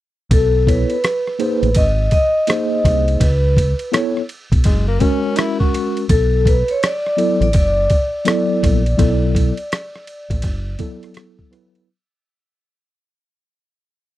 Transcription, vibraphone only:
0, 0, Header, 1, 2, 480
1, 0, Start_track
1, 0, Tempo, 722892
1, 207, Time_signature, 4, 2, 24, 8
1, 9409, End_track
2, 0, Start_track
2, 0, Title_t, "Vibraphone"
2, 0, Program_c, 0, 11
2, 219, Note_on_c, 0, 69, 87
2, 437, Note_off_c, 0, 69, 0
2, 455, Note_on_c, 0, 71, 92
2, 1174, Note_on_c, 0, 75, 101
2, 1193, Note_off_c, 0, 71, 0
2, 1407, Note_off_c, 0, 75, 0
2, 1415, Note_on_c, 0, 75, 100
2, 2128, Note_on_c, 0, 71, 78
2, 2152, Note_off_c, 0, 75, 0
2, 2581, Note_off_c, 0, 71, 0
2, 4053, Note_on_c, 0, 69, 98
2, 4297, Note_off_c, 0, 69, 0
2, 4297, Note_on_c, 0, 71, 91
2, 4449, Note_off_c, 0, 71, 0
2, 4455, Note_on_c, 0, 73, 91
2, 4537, Note_off_c, 0, 73, 0
2, 4542, Note_on_c, 0, 74, 106
2, 4924, Note_off_c, 0, 74, 0
2, 4932, Note_on_c, 0, 74, 96
2, 4969, Note_off_c, 0, 74, 0
2, 5020, Note_on_c, 0, 74, 93
2, 7387, Note_off_c, 0, 74, 0
2, 9409, End_track
0, 0, End_of_file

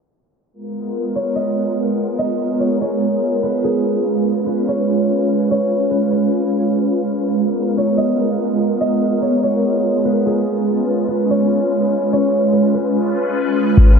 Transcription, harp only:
0, 0, Header, 1, 2, 480
1, 0, Start_track
1, 0, Tempo, 413793
1, 621, Time_signature, 4, 2, 24, 8
1, 16234, End_track
2, 0, Start_track
2, 0, Title_t, "Harp"
2, 0, Program_c, 0, 46
2, 1340, Note_on_c, 0, 73, 74
2, 1571, Note_on_c, 0, 75, 83
2, 2530, Note_off_c, 0, 75, 0
2, 2535, Note_on_c, 0, 75, 96
2, 3010, Note_off_c, 0, 73, 0
2, 3014, Note_on_c, 0, 73, 76
2, 3259, Note_off_c, 0, 73, 0
2, 3263, Note_on_c, 0, 73, 78
2, 3978, Note_on_c, 0, 71, 89
2, 4223, Note_on_c, 0, 68, 88
2, 4604, Note_off_c, 0, 75, 0
2, 5169, Note_off_c, 0, 71, 0
2, 5173, Note_on_c, 0, 71, 79
2, 5426, Note_off_c, 0, 73, 0
2, 5431, Note_on_c, 0, 73, 83
2, 6387, Note_off_c, 0, 73, 0
2, 6391, Note_on_c, 0, 73, 102
2, 6848, Note_off_c, 0, 71, 0
2, 6853, Note_on_c, 0, 71, 75
2, 6860, Note_off_c, 0, 68, 0
2, 7097, Note_off_c, 0, 71, 0
2, 7101, Note_on_c, 0, 71, 70
2, 8609, Note_off_c, 0, 73, 0
2, 9022, Note_on_c, 0, 73, 76
2, 9250, Note_on_c, 0, 75, 83
2, 9478, Note_off_c, 0, 71, 0
2, 10211, Note_off_c, 0, 75, 0
2, 10215, Note_on_c, 0, 75, 97
2, 10688, Note_off_c, 0, 73, 0
2, 10693, Note_on_c, 0, 73, 78
2, 10939, Note_off_c, 0, 73, 0
2, 10943, Note_on_c, 0, 73, 82
2, 11657, Note_on_c, 0, 71, 88
2, 11905, Note_on_c, 0, 68, 91
2, 12285, Note_off_c, 0, 75, 0
2, 12849, Note_off_c, 0, 71, 0
2, 12853, Note_on_c, 0, 71, 79
2, 13106, Note_off_c, 0, 73, 0
2, 13111, Note_on_c, 0, 73, 85
2, 14066, Note_off_c, 0, 73, 0
2, 14070, Note_on_c, 0, 73, 103
2, 14530, Note_off_c, 0, 71, 0
2, 14534, Note_on_c, 0, 71, 74
2, 14542, Note_off_c, 0, 68, 0
2, 14777, Note_off_c, 0, 71, 0
2, 14782, Note_on_c, 0, 71, 72
2, 16234, Note_off_c, 0, 71, 0
2, 16234, Note_off_c, 0, 73, 0
2, 16234, End_track
0, 0, End_of_file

